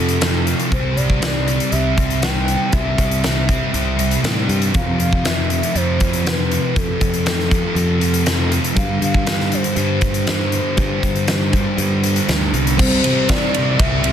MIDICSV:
0, 0, Header, 1, 5, 480
1, 0, Start_track
1, 0, Key_signature, 0, "major"
1, 0, Tempo, 503356
1, 681, Time_signature, 4, 2, 24, 8
1, 13469, End_track
2, 0, Start_track
2, 0, Title_t, "Soft synth lead"
2, 0, Program_c, 0, 80
2, 0, Note_on_c, 0, 69, 96
2, 400, Note_off_c, 0, 69, 0
2, 679, Note_on_c, 0, 72, 90
2, 917, Note_on_c, 0, 74, 96
2, 931, Note_off_c, 0, 72, 0
2, 1634, Note_on_c, 0, 76, 103
2, 1649, Note_off_c, 0, 74, 0
2, 2120, Note_on_c, 0, 79, 106
2, 2135, Note_off_c, 0, 76, 0
2, 2602, Note_off_c, 0, 79, 0
2, 2607, Note_on_c, 0, 76, 92
2, 4007, Note_off_c, 0, 76, 0
2, 4525, Note_on_c, 0, 77, 98
2, 4747, Note_off_c, 0, 77, 0
2, 4763, Note_on_c, 0, 77, 111
2, 5007, Note_on_c, 0, 76, 99
2, 5021, Note_off_c, 0, 77, 0
2, 5490, Note_on_c, 0, 72, 90
2, 5505, Note_off_c, 0, 76, 0
2, 5978, Note_on_c, 0, 71, 85
2, 5992, Note_off_c, 0, 72, 0
2, 6453, Note_on_c, 0, 69, 84
2, 6467, Note_off_c, 0, 71, 0
2, 8126, Note_off_c, 0, 69, 0
2, 8359, Note_on_c, 0, 77, 104
2, 8583, Note_off_c, 0, 77, 0
2, 8612, Note_on_c, 0, 77, 114
2, 9096, Note_on_c, 0, 72, 93
2, 9111, Note_off_c, 0, 77, 0
2, 11727, Note_off_c, 0, 72, 0
2, 12182, Note_on_c, 0, 72, 97
2, 12668, Note_on_c, 0, 74, 101
2, 12682, Note_off_c, 0, 72, 0
2, 13147, Note_on_c, 0, 76, 101
2, 13162, Note_off_c, 0, 74, 0
2, 13469, Note_off_c, 0, 76, 0
2, 13469, End_track
3, 0, Start_track
3, 0, Title_t, "Distorted electric guitar"
3, 0, Program_c, 1, 30
3, 0, Note_on_c, 1, 41, 68
3, 0, Note_on_c, 1, 48, 59
3, 0, Note_on_c, 1, 53, 62
3, 168, Note_off_c, 1, 41, 0
3, 179, Note_on_c, 1, 41, 68
3, 186, Note_off_c, 1, 48, 0
3, 197, Note_on_c, 1, 48, 70
3, 200, Note_off_c, 1, 53, 0
3, 212, Note_on_c, 1, 53, 64
3, 656, Note_off_c, 1, 41, 0
3, 662, Note_off_c, 1, 48, 0
3, 672, Note_off_c, 1, 53, 0
3, 673, Note_on_c, 1, 48, 94
3, 687, Note_on_c, 1, 55, 99
3, 700, Note_on_c, 1, 60, 109
3, 1143, Note_off_c, 1, 48, 0
3, 1146, Note_on_c, 1, 48, 74
3, 1157, Note_off_c, 1, 55, 0
3, 1161, Note_on_c, 1, 55, 69
3, 1174, Note_off_c, 1, 60, 0
3, 1178, Note_on_c, 1, 60, 78
3, 1392, Note_off_c, 1, 60, 0
3, 1396, Note_on_c, 1, 60, 63
3, 1421, Note_off_c, 1, 55, 0
3, 1425, Note_on_c, 1, 55, 54
3, 1628, Note_off_c, 1, 48, 0
3, 1632, Note_on_c, 1, 48, 68
3, 1641, Note_off_c, 1, 55, 0
3, 1652, Note_on_c, 1, 55, 82
3, 1662, Note_off_c, 1, 60, 0
3, 1666, Note_on_c, 1, 60, 78
3, 1872, Note_off_c, 1, 60, 0
3, 1875, Note_on_c, 1, 60, 59
3, 1895, Note_off_c, 1, 55, 0
3, 1906, Note_on_c, 1, 55, 47
3, 2099, Note_off_c, 1, 48, 0
3, 2110, Note_on_c, 1, 48, 72
3, 2116, Note_off_c, 1, 55, 0
3, 2127, Note_on_c, 1, 55, 75
3, 2139, Note_off_c, 1, 60, 0
3, 2143, Note_on_c, 1, 60, 69
3, 2583, Note_off_c, 1, 48, 0
3, 2595, Note_on_c, 1, 48, 90
3, 2600, Note_off_c, 1, 55, 0
3, 2612, Note_on_c, 1, 55, 92
3, 2623, Note_off_c, 1, 60, 0
3, 2627, Note_on_c, 1, 60, 100
3, 3060, Note_off_c, 1, 48, 0
3, 3071, Note_on_c, 1, 48, 67
3, 3075, Note_off_c, 1, 55, 0
3, 3086, Note_on_c, 1, 55, 78
3, 3099, Note_off_c, 1, 60, 0
3, 3103, Note_on_c, 1, 60, 80
3, 3299, Note_off_c, 1, 60, 0
3, 3303, Note_on_c, 1, 60, 63
3, 3327, Note_off_c, 1, 55, 0
3, 3338, Note_on_c, 1, 55, 47
3, 3537, Note_off_c, 1, 48, 0
3, 3548, Note_on_c, 1, 48, 76
3, 3556, Note_off_c, 1, 55, 0
3, 3567, Note_on_c, 1, 55, 72
3, 3576, Note_off_c, 1, 60, 0
3, 3580, Note_on_c, 1, 60, 74
3, 3777, Note_off_c, 1, 60, 0
3, 3780, Note_on_c, 1, 60, 57
3, 3804, Note_off_c, 1, 55, 0
3, 3815, Note_on_c, 1, 55, 51
3, 4012, Note_off_c, 1, 48, 0
3, 4024, Note_on_c, 1, 48, 66
3, 4028, Note_off_c, 1, 55, 0
3, 4040, Note_on_c, 1, 55, 79
3, 4053, Note_off_c, 1, 60, 0
3, 4057, Note_on_c, 1, 60, 80
3, 4499, Note_off_c, 1, 48, 0
3, 4506, Note_on_c, 1, 41, 95
3, 4507, Note_off_c, 1, 55, 0
3, 4523, Note_on_c, 1, 48, 96
3, 4539, Note_on_c, 1, 53, 108
3, 4989, Note_off_c, 1, 41, 0
3, 4992, Note_on_c, 1, 41, 70
3, 5000, Note_off_c, 1, 48, 0
3, 5011, Note_on_c, 1, 48, 76
3, 5022, Note_off_c, 1, 53, 0
3, 5026, Note_on_c, 1, 53, 73
3, 5224, Note_off_c, 1, 53, 0
3, 5228, Note_on_c, 1, 53, 63
3, 5247, Note_off_c, 1, 48, 0
3, 5258, Note_on_c, 1, 48, 49
3, 5466, Note_off_c, 1, 41, 0
3, 5470, Note_on_c, 1, 41, 72
3, 5477, Note_off_c, 1, 48, 0
3, 5488, Note_on_c, 1, 48, 74
3, 5494, Note_off_c, 1, 53, 0
3, 5498, Note_on_c, 1, 53, 78
3, 5709, Note_off_c, 1, 53, 0
3, 5713, Note_on_c, 1, 53, 57
3, 5737, Note_off_c, 1, 48, 0
3, 5748, Note_on_c, 1, 48, 46
3, 5933, Note_off_c, 1, 41, 0
3, 5945, Note_on_c, 1, 41, 62
3, 5952, Note_off_c, 1, 48, 0
3, 5964, Note_on_c, 1, 48, 72
3, 5979, Note_off_c, 1, 53, 0
3, 5983, Note_on_c, 1, 53, 74
3, 6420, Note_off_c, 1, 41, 0
3, 6431, Note_on_c, 1, 41, 104
3, 6437, Note_off_c, 1, 48, 0
3, 6448, Note_on_c, 1, 48, 95
3, 6461, Note_off_c, 1, 53, 0
3, 6465, Note_on_c, 1, 53, 100
3, 6898, Note_off_c, 1, 41, 0
3, 6909, Note_on_c, 1, 41, 67
3, 6911, Note_off_c, 1, 48, 0
3, 6923, Note_on_c, 1, 48, 85
3, 6937, Note_off_c, 1, 53, 0
3, 6941, Note_on_c, 1, 53, 82
3, 7136, Note_off_c, 1, 53, 0
3, 7140, Note_on_c, 1, 53, 54
3, 7162, Note_off_c, 1, 48, 0
3, 7173, Note_on_c, 1, 48, 50
3, 7375, Note_off_c, 1, 41, 0
3, 7386, Note_on_c, 1, 41, 75
3, 7391, Note_off_c, 1, 48, 0
3, 7395, Note_off_c, 1, 60, 0
3, 7402, Note_on_c, 1, 48, 71
3, 7414, Note_off_c, 1, 53, 0
3, 7418, Note_on_c, 1, 53, 69
3, 7621, Note_off_c, 1, 53, 0
3, 7624, Note_on_c, 1, 53, 65
3, 7645, Note_off_c, 1, 48, 0
3, 7656, Note_on_c, 1, 48, 52
3, 7847, Note_off_c, 1, 41, 0
3, 7858, Note_on_c, 1, 41, 61
3, 7864, Note_off_c, 1, 48, 0
3, 7875, Note_on_c, 1, 48, 67
3, 7889, Note_off_c, 1, 53, 0
3, 7893, Note_on_c, 1, 53, 82
3, 8330, Note_off_c, 1, 41, 0
3, 8334, Note_on_c, 1, 43, 87
3, 8343, Note_off_c, 1, 48, 0
3, 8355, Note_on_c, 1, 50, 102
3, 8363, Note_off_c, 1, 53, 0
3, 8369, Note_on_c, 1, 55, 110
3, 8809, Note_off_c, 1, 43, 0
3, 8813, Note_on_c, 1, 43, 66
3, 8817, Note_off_c, 1, 50, 0
3, 8829, Note_on_c, 1, 50, 84
3, 8841, Note_off_c, 1, 55, 0
3, 8845, Note_on_c, 1, 55, 80
3, 9059, Note_off_c, 1, 55, 0
3, 9062, Note_on_c, 1, 55, 64
3, 9082, Note_off_c, 1, 50, 0
3, 9094, Note_on_c, 1, 50, 52
3, 9292, Note_off_c, 1, 43, 0
3, 9296, Note_on_c, 1, 43, 79
3, 9303, Note_off_c, 1, 50, 0
3, 9315, Note_on_c, 1, 50, 80
3, 9323, Note_off_c, 1, 55, 0
3, 9327, Note_on_c, 1, 55, 75
3, 9547, Note_off_c, 1, 55, 0
3, 9550, Note_on_c, 1, 55, 66
3, 9569, Note_off_c, 1, 50, 0
3, 9581, Note_on_c, 1, 50, 53
3, 9774, Note_off_c, 1, 43, 0
3, 9785, Note_on_c, 1, 43, 65
3, 9790, Note_off_c, 1, 50, 0
3, 9801, Note_on_c, 1, 50, 69
3, 9813, Note_off_c, 1, 55, 0
3, 9817, Note_on_c, 1, 55, 67
3, 10252, Note_off_c, 1, 43, 0
3, 10264, Note_on_c, 1, 43, 94
3, 10273, Note_off_c, 1, 50, 0
3, 10284, Note_on_c, 1, 50, 102
3, 10288, Note_off_c, 1, 55, 0
3, 10300, Note_on_c, 1, 55, 103
3, 10737, Note_off_c, 1, 43, 0
3, 10749, Note_on_c, 1, 43, 78
3, 10758, Note_off_c, 1, 50, 0
3, 10769, Note_on_c, 1, 50, 78
3, 10772, Note_off_c, 1, 55, 0
3, 10783, Note_on_c, 1, 55, 73
3, 10988, Note_off_c, 1, 55, 0
3, 10999, Note_on_c, 1, 55, 58
3, 11015, Note_off_c, 1, 50, 0
3, 11027, Note_on_c, 1, 50, 48
3, 11223, Note_off_c, 1, 43, 0
3, 11235, Note_on_c, 1, 43, 68
3, 11238, Note_off_c, 1, 50, 0
3, 11249, Note_on_c, 1, 50, 84
3, 11253, Note_off_c, 1, 55, 0
3, 11264, Note_on_c, 1, 55, 79
3, 11454, Note_off_c, 1, 55, 0
3, 11466, Note_on_c, 1, 55, 58
3, 11484, Note_off_c, 1, 50, 0
3, 11495, Note_on_c, 1, 50, 52
3, 11700, Note_off_c, 1, 43, 0
3, 11712, Note_on_c, 1, 43, 67
3, 11720, Note_off_c, 1, 50, 0
3, 11731, Note_on_c, 1, 50, 77
3, 11735, Note_off_c, 1, 55, 0
3, 11746, Note_on_c, 1, 55, 71
3, 12180, Note_off_c, 1, 43, 0
3, 12184, Note_off_c, 1, 50, 0
3, 12187, Note_on_c, 1, 48, 103
3, 12194, Note_off_c, 1, 55, 0
3, 12205, Note_on_c, 1, 55, 107
3, 12221, Note_on_c, 1, 60, 113
3, 12896, Note_off_c, 1, 60, 0
3, 12900, Note_on_c, 1, 60, 70
3, 12932, Note_off_c, 1, 55, 0
3, 12936, Note_on_c, 1, 55, 51
3, 13130, Note_off_c, 1, 48, 0
3, 13134, Note_on_c, 1, 48, 84
3, 13140, Note_off_c, 1, 55, 0
3, 13152, Note_on_c, 1, 55, 81
3, 13165, Note_off_c, 1, 60, 0
3, 13169, Note_on_c, 1, 60, 88
3, 13374, Note_off_c, 1, 60, 0
3, 13378, Note_on_c, 1, 60, 65
3, 13401, Note_off_c, 1, 55, 0
3, 13413, Note_on_c, 1, 55, 53
3, 13469, Note_off_c, 1, 48, 0
3, 13469, Note_off_c, 1, 55, 0
3, 13469, Note_off_c, 1, 60, 0
3, 13469, End_track
4, 0, Start_track
4, 0, Title_t, "Picked electric bass"
4, 0, Program_c, 2, 34
4, 0, Note_on_c, 2, 41, 84
4, 502, Note_off_c, 2, 41, 0
4, 681, Note_on_c, 2, 36, 89
4, 878, Note_off_c, 2, 36, 0
4, 921, Note_on_c, 2, 36, 95
4, 1512, Note_off_c, 2, 36, 0
4, 1641, Note_on_c, 2, 36, 95
4, 2428, Note_off_c, 2, 36, 0
4, 2602, Note_on_c, 2, 36, 95
4, 2799, Note_off_c, 2, 36, 0
4, 2844, Note_on_c, 2, 36, 94
4, 3433, Note_off_c, 2, 36, 0
4, 3565, Note_on_c, 2, 36, 90
4, 3957, Note_off_c, 2, 36, 0
4, 4038, Note_on_c, 2, 45, 76
4, 4257, Note_off_c, 2, 45, 0
4, 4278, Note_on_c, 2, 43, 84
4, 4496, Note_off_c, 2, 43, 0
4, 4756, Note_on_c, 2, 41, 87
4, 5348, Note_off_c, 2, 41, 0
4, 5484, Note_on_c, 2, 41, 88
4, 6268, Note_off_c, 2, 41, 0
4, 6449, Note_on_c, 2, 41, 85
4, 6642, Note_off_c, 2, 41, 0
4, 6683, Note_on_c, 2, 41, 83
4, 7271, Note_off_c, 2, 41, 0
4, 7391, Note_on_c, 2, 41, 94
4, 8181, Note_off_c, 2, 41, 0
4, 8355, Note_on_c, 2, 43, 87
4, 8554, Note_off_c, 2, 43, 0
4, 8593, Note_on_c, 2, 43, 81
4, 9185, Note_off_c, 2, 43, 0
4, 9307, Note_on_c, 2, 43, 85
4, 10098, Note_off_c, 2, 43, 0
4, 10272, Note_on_c, 2, 43, 103
4, 10472, Note_off_c, 2, 43, 0
4, 10516, Note_on_c, 2, 43, 88
4, 11106, Note_off_c, 2, 43, 0
4, 11228, Note_on_c, 2, 43, 83
4, 11625, Note_off_c, 2, 43, 0
4, 11715, Note_on_c, 2, 38, 73
4, 11932, Note_off_c, 2, 38, 0
4, 11953, Note_on_c, 2, 36, 78
4, 12171, Note_off_c, 2, 36, 0
4, 12196, Note_on_c, 2, 36, 91
4, 12393, Note_off_c, 2, 36, 0
4, 13154, Note_on_c, 2, 36, 99
4, 13351, Note_off_c, 2, 36, 0
4, 13387, Note_on_c, 2, 36, 86
4, 13469, Note_off_c, 2, 36, 0
4, 13469, End_track
5, 0, Start_track
5, 0, Title_t, "Drums"
5, 83, Note_on_c, 9, 42, 64
5, 178, Note_off_c, 9, 42, 0
5, 203, Note_on_c, 9, 42, 75
5, 209, Note_on_c, 9, 38, 115
5, 298, Note_off_c, 9, 42, 0
5, 304, Note_off_c, 9, 38, 0
5, 447, Note_on_c, 9, 42, 65
5, 543, Note_off_c, 9, 42, 0
5, 568, Note_on_c, 9, 42, 58
5, 663, Note_off_c, 9, 42, 0
5, 686, Note_on_c, 9, 36, 111
5, 687, Note_on_c, 9, 42, 57
5, 781, Note_off_c, 9, 36, 0
5, 782, Note_off_c, 9, 42, 0
5, 929, Note_on_c, 9, 42, 61
5, 1024, Note_off_c, 9, 42, 0
5, 1046, Note_on_c, 9, 36, 75
5, 1141, Note_off_c, 9, 36, 0
5, 1164, Note_on_c, 9, 42, 74
5, 1170, Note_on_c, 9, 38, 117
5, 1259, Note_off_c, 9, 42, 0
5, 1265, Note_off_c, 9, 38, 0
5, 1408, Note_on_c, 9, 42, 75
5, 1503, Note_off_c, 9, 42, 0
5, 1528, Note_on_c, 9, 42, 67
5, 1624, Note_off_c, 9, 42, 0
5, 1642, Note_on_c, 9, 42, 65
5, 1737, Note_off_c, 9, 42, 0
5, 1884, Note_on_c, 9, 42, 64
5, 1885, Note_on_c, 9, 36, 89
5, 1980, Note_off_c, 9, 42, 0
5, 1981, Note_off_c, 9, 36, 0
5, 2007, Note_on_c, 9, 42, 61
5, 2102, Note_off_c, 9, 42, 0
5, 2120, Note_on_c, 9, 42, 64
5, 2126, Note_on_c, 9, 38, 114
5, 2216, Note_off_c, 9, 42, 0
5, 2222, Note_off_c, 9, 38, 0
5, 2365, Note_on_c, 9, 42, 72
5, 2460, Note_off_c, 9, 42, 0
5, 2599, Note_on_c, 9, 42, 65
5, 2603, Note_on_c, 9, 36, 100
5, 2694, Note_off_c, 9, 42, 0
5, 2698, Note_off_c, 9, 36, 0
5, 2845, Note_on_c, 9, 36, 76
5, 2847, Note_on_c, 9, 42, 63
5, 2941, Note_off_c, 9, 36, 0
5, 2943, Note_off_c, 9, 42, 0
5, 2970, Note_on_c, 9, 42, 69
5, 3065, Note_off_c, 9, 42, 0
5, 3087, Note_on_c, 9, 42, 75
5, 3093, Note_on_c, 9, 38, 104
5, 3182, Note_off_c, 9, 42, 0
5, 3188, Note_off_c, 9, 38, 0
5, 3326, Note_on_c, 9, 36, 89
5, 3328, Note_on_c, 9, 42, 78
5, 3422, Note_off_c, 9, 36, 0
5, 3423, Note_off_c, 9, 42, 0
5, 3568, Note_on_c, 9, 42, 70
5, 3663, Note_off_c, 9, 42, 0
5, 3804, Note_on_c, 9, 42, 79
5, 3900, Note_off_c, 9, 42, 0
5, 3922, Note_on_c, 9, 42, 72
5, 4017, Note_off_c, 9, 42, 0
5, 4046, Note_on_c, 9, 42, 71
5, 4051, Note_on_c, 9, 38, 108
5, 4141, Note_off_c, 9, 42, 0
5, 4147, Note_off_c, 9, 38, 0
5, 4285, Note_on_c, 9, 42, 71
5, 4381, Note_off_c, 9, 42, 0
5, 4403, Note_on_c, 9, 42, 70
5, 4498, Note_off_c, 9, 42, 0
5, 4523, Note_on_c, 9, 42, 62
5, 4527, Note_on_c, 9, 36, 108
5, 4618, Note_off_c, 9, 42, 0
5, 4622, Note_off_c, 9, 36, 0
5, 4767, Note_on_c, 9, 42, 70
5, 4862, Note_off_c, 9, 42, 0
5, 4888, Note_on_c, 9, 36, 78
5, 4984, Note_off_c, 9, 36, 0
5, 5005, Note_on_c, 9, 42, 65
5, 5011, Note_on_c, 9, 38, 109
5, 5101, Note_off_c, 9, 42, 0
5, 5107, Note_off_c, 9, 38, 0
5, 5246, Note_on_c, 9, 42, 71
5, 5341, Note_off_c, 9, 42, 0
5, 5371, Note_on_c, 9, 42, 68
5, 5466, Note_off_c, 9, 42, 0
5, 5488, Note_on_c, 9, 42, 68
5, 5584, Note_off_c, 9, 42, 0
5, 5725, Note_on_c, 9, 42, 66
5, 5730, Note_on_c, 9, 36, 85
5, 5820, Note_off_c, 9, 42, 0
5, 5826, Note_off_c, 9, 36, 0
5, 5850, Note_on_c, 9, 42, 61
5, 5945, Note_off_c, 9, 42, 0
5, 5975, Note_on_c, 9, 42, 64
5, 5981, Note_on_c, 9, 38, 117
5, 6071, Note_off_c, 9, 42, 0
5, 6076, Note_off_c, 9, 38, 0
5, 6212, Note_on_c, 9, 42, 74
5, 6308, Note_off_c, 9, 42, 0
5, 6448, Note_on_c, 9, 42, 70
5, 6449, Note_on_c, 9, 36, 102
5, 6543, Note_off_c, 9, 42, 0
5, 6544, Note_off_c, 9, 36, 0
5, 6685, Note_on_c, 9, 42, 64
5, 6687, Note_on_c, 9, 36, 87
5, 6781, Note_off_c, 9, 42, 0
5, 6783, Note_off_c, 9, 36, 0
5, 6805, Note_on_c, 9, 42, 62
5, 6901, Note_off_c, 9, 42, 0
5, 6924, Note_on_c, 9, 42, 78
5, 6930, Note_on_c, 9, 38, 116
5, 7020, Note_off_c, 9, 42, 0
5, 7025, Note_off_c, 9, 38, 0
5, 7052, Note_on_c, 9, 38, 32
5, 7147, Note_off_c, 9, 38, 0
5, 7165, Note_on_c, 9, 36, 90
5, 7165, Note_on_c, 9, 42, 81
5, 7261, Note_off_c, 9, 36, 0
5, 7261, Note_off_c, 9, 42, 0
5, 7403, Note_on_c, 9, 42, 73
5, 7499, Note_off_c, 9, 42, 0
5, 7642, Note_on_c, 9, 42, 71
5, 7738, Note_off_c, 9, 42, 0
5, 7760, Note_on_c, 9, 42, 68
5, 7855, Note_off_c, 9, 42, 0
5, 7878, Note_on_c, 9, 42, 76
5, 7884, Note_on_c, 9, 38, 101
5, 7974, Note_off_c, 9, 42, 0
5, 7979, Note_off_c, 9, 38, 0
5, 8122, Note_on_c, 9, 42, 81
5, 8218, Note_off_c, 9, 42, 0
5, 8243, Note_on_c, 9, 42, 65
5, 8338, Note_off_c, 9, 42, 0
5, 8359, Note_on_c, 9, 36, 108
5, 8359, Note_on_c, 9, 42, 69
5, 8454, Note_off_c, 9, 42, 0
5, 8455, Note_off_c, 9, 36, 0
5, 8602, Note_on_c, 9, 42, 71
5, 8697, Note_off_c, 9, 42, 0
5, 8720, Note_on_c, 9, 36, 74
5, 8816, Note_off_c, 9, 36, 0
5, 8836, Note_on_c, 9, 42, 75
5, 8842, Note_on_c, 9, 38, 111
5, 8932, Note_off_c, 9, 42, 0
5, 8937, Note_off_c, 9, 38, 0
5, 8967, Note_on_c, 9, 38, 35
5, 9062, Note_off_c, 9, 38, 0
5, 9076, Note_on_c, 9, 42, 71
5, 9172, Note_off_c, 9, 42, 0
5, 9195, Note_on_c, 9, 42, 60
5, 9290, Note_off_c, 9, 42, 0
5, 9310, Note_on_c, 9, 42, 59
5, 9405, Note_off_c, 9, 42, 0
5, 9548, Note_on_c, 9, 42, 70
5, 9554, Note_on_c, 9, 36, 87
5, 9643, Note_off_c, 9, 42, 0
5, 9650, Note_off_c, 9, 36, 0
5, 9671, Note_on_c, 9, 42, 62
5, 9767, Note_off_c, 9, 42, 0
5, 9792, Note_on_c, 9, 42, 69
5, 9798, Note_on_c, 9, 38, 106
5, 9888, Note_off_c, 9, 42, 0
5, 9893, Note_off_c, 9, 38, 0
5, 10034, Note_on_c, 9, 42, 63
5, 10130, Note_off_c, 9, 42, 0
5, 10273, Note_on_c, 9, 42, 59
5, 10277, Note_on_c, 9, 36, 93
5, 10369, Note_off_c, 9, 42, 0
5, 10373, Note_off_c, 9, 36, 0
5, 10519, Note_on_c, 9, 36, 80
5, 10519, Note_on_c, 9, 42, 62
5, 10614, Note_off_c, 9, 36, 0
5, 10615, Note_off_c, 9, 42, 0
5, 10638, Note_on_c, 9, 42, 58
5, 10733, Note_off_c, 9, 42, 0
5, 10753, Note_on_c, 9, 42, 72
5, 10758, Note_on_c, 9, 38, 122
5, 10848, Note_off_c, 9, 42, 0
5, 10854, Note_off_c, 9, 38, 0
5, 10995, Note_on_c, 9, 42, 72
5, 10998, Note_on_c, 9, 36, 90
5, 11091, Note_off_c, 9, 42, 0
5, 11093, Note_off_c, 9, 36, 0
5, 11236, Note_on_c, 9, 42, 67
5, 11332, Note_off_c, 9, 42, 0
5, 11477, Note_on_c, 9, 42, 79
5, 11572, Note_off_c, 9, 42, 0
5, 11596, Note_on_c, 9, 42, 72
5, 11691, Note_off_c, 9, 42, 0
5, 11717, Note_on_c, 9, 42, 69
5, 11723, Note_on_c, 9, 38, 106
5, 11812, Note_off_c, 9, 42, 0
5, 11818, Note_off_c, 9, 38, 0
5, 11956, Note_on_c, 9, 42, 74
5, 12052, Note_off_c, 9, 42, 0
5, 12082, Note_on_c, 9, 42, 62
5, 12178, Note_off_c, 9, 42, 0
5, 12199, Note_on_c, 9, 36, 107
5, 12201, Note_on_c, 9, 49, 121
5, 12295, Note_off_c, 9, 36, 0
5, 12296, Note_off_c, 9, 49, 0
5, 12436, Note_on_c, 9, 51, 77
5, 12441, Note_on_c, 9, 38, 34
5, 12531, Note_off_c, 9, 51, 0
5, 12537, Note_off_c, 9, 38, 0
5, 12672, Note_on_c, 9, 51, 99
5, 12677, Note_on_c, 9, 36, 118
5, 12677, Note_on_c, 9, 38, 125
5, 12767, Note_off_c, 9, 51, 0
5, 12772, Note_off_c, 9, 36, 0
5, 12773, Note_off_c, 9, 38, 0
5, 12916, Note_on_c, 9, 51, 82
5, 13011, Note_off_c, 9, 51, 0
5, 13155, Note_on_c, 9, 36, 109
5, 13155, Note_on_c, 9, 51, 99
5, 13250, Note_off_c, 9, 36, 0
5, 13250, Note_off_c, 9, 51, 0
5, 13388, Note_on_c, 9, 51, 81
5, 13469, Note_off_c, 9, 51, 0
5, 13469, End_track
0, 0, End_of_file